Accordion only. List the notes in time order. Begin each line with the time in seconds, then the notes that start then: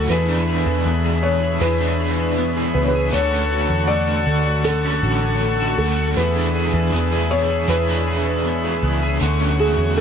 0.10 G#4 E5 B5
3.13 A4 F#5 A5 C#6
6.17 G#4 E5 B5
9.21 A3 F#5 C#6